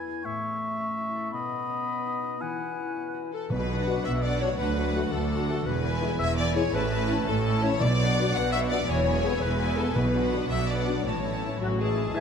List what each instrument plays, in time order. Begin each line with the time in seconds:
Already playing: harp E2 B3 E4, clarinet E4, oboe G#5
0.07 harp G#4
0.24 harp A2, clarinet A3, oboe E5, flute C#6
0.43 harp C#4
0.79 harp C#4
0.97 harp E4
1.15 harp A4
1.32 harp B2, clarinet B3, oboe D#5, flute B5
1.51 harp B3
1.69 harp C#4
2.05 harp D#4
2.23 harp F#4
2.40 harp E3, clarinet E4, oboe F#5, flute G#5
2.60 harp B3
2.78 harp C#4
2.96 harp B3
3.14 harp F#4
3.32 harp G#4, violin section A4, clarinet A4
3.49 double bass section B1, timpani B2, harp B2, cello section B2, violin section B4, clarinet B4
3.60 harp D4
3.69 viola section D4 F#4, harp F#4, violin section F#5
3.78 harp B4
3.87 french horn section D4 F#4, harp D5
3.97 harp F#5
4.04 double bass section B1, cello section B2, violin section E5, clarinet E5, harp B5
4.15 harp D5
4.22 viola section D4 F#4, harp B4, violin section D5 F#5, clarinet D5
4.33 harp F#4
4.41 french horn section D4 F#4, harp D4, violin section C#5, clarinet C#5
4.50 harp F#3
4.57 cello section D2, double bass section D2, harp D3, viola section D4 F#4, clarinet B4, violin section B4 F#5
4.68 harp D4
4.77 viola section D4 F#4, harp F#4, violin section F#5
4.86 harp A4
4.94 french horn section A3 F#4, harp D5
5.04 harp F#5
5.10 cello section D2, double bass section D2, violin section A4, clarinet A4, harp A5
5.22 harp D5
5.30 viola section D4 F#4, harp A4, violin section F#5
5.39 harp F#4
5.48 french horn section A3 F#4, harp D4, violin section A4, clarinet A4
5.57 harp A3
5.65 double bass section E1, cello section E2, harp E3, clarinet B4, violin section B4
5.75 harp E4
5.84 viola section B3 E4, harp G#4, violin section G#5
5.93 harp B4
6.01 french horn section G#3 E4, harp E5
6.12 harp G#5
6.19 double bass section E1, cello section E2, clarinet E5, violin section E5, harp B5
6.30 harp E5
6.37 viola section B3 E4, harp B4, violin section D5 G#5, clarinet D5
6.47 harp G#4
6.55 french horn section G#3 E4, violin section C#5, clarinet C#5
6.65 harp B3
6.72 double bass section A1, cello section A2, harp A2, viola section C#4 E4, clarinet B4, violin section B4 A5
6.83 harp C#4
6.91 viola section C#4 E4, harp E4, violin section A5
7.01 harp A4
7.08 french horn section C#4 E4, harp C#5
7.19 harp E5
7.27 double bass section A1, cello section A2, violin section A4, clarinet A4, harp A5
7.36 harp C#5
7.44 viola section C#4 E4, harp A4, violin section A5
7.54 harp E4
7.62 french horn section C#4 E4, harp C#4, clarinet C#5, violin section C#5
7.72 harp E3
7.80 double bass section B1, cello section B2, timpani B2, harp B2, clarinet D5, violin section D5
7.91 harp B3
7.99 viola section B3 D4, harp D4, violin section F#5
8.08 harp F#4
8.17 french horn section B3 F#4, harp B4
8.26 harp D5
8.34 double bass section B1, cello section B2, clarinet F#5, harp F#5, violin section F#5
8.43 harp B4
8.51 viola section B3 D4, harp F#4, violin section E5 F#5, clarinet E5
8.61 harp D4
8.69 harp B3, french horn section B3 F#4, clarinet D5, violin section D5
8.79 harp F#3
8.87 double bass section E1, cello section E2, harp E3, viola section B3 E4, clarinet C#5, violin section C#5 G#5
8.97 harp E4
9.04 viola section B3 E4, harp G#4, violin section G#5
9.15 harp B4
9.24 french horn section B3 G#4, harp E5
9.33 harp G#5
9.41 double bass section E1, cello section E2, clarinet B4, violin section B4, harp B5
9.51 harp E5
9.59 viola section B3 E4, harp B4, violin section G#5
9.69 harp G#4
9.76 french horn section B3 G#4, harp E4, clarinet A4, violin section A4
9.95 double bass section B1, harp B2, cello section B2, timpani B2, clarinet B4, violin section B4
10.04 harp B3
10.13 viola section B3 D4, harp D4, violin section F#5
10.23 harp F#4
10.32 french horn section D4 F#4, harp B4
10.41 harp D5
10.49 double bass section B1, cello section B2, violin section E5, clarinet E5, harp F#5
10.59 harp B4
10.68 viola section B3 D4, harp F#4, clarinet D5, violin section D5 F#5
10.77 harp D4
10.86 harp B3, french horn section D4 F#4
10.96 harp F#3
11.04 double bass section A1, harp A2, cello section A2, viola section E3 E4, violin section C#5 A5, clarinet C#5
11.15 harp E4
11.23 harp E3, viola section E3 E4, violin section A5
11.33 harp A3
11.41 french horn section C#4 E4, harp E5
11.52 harp C#5
11.58 double bass section A1, cello section A2, french horn section F#3, violin section F#4, flute F#4, harp C#6
11.70 harp E5
11.76 viola section E3 E4, french horn section G#3, flute G#4, violin section A5
11.80 violin section G#4
11.88 harp E4
11.95 harp E3, french horn section C#4 E4
12.08 harp E4
12.14 double bass section E1, cello section E2, harp E2, french horn section E4, violin section G#4 B4 E5, viola section G#4, clarinet B4, flute E5, oboe G#5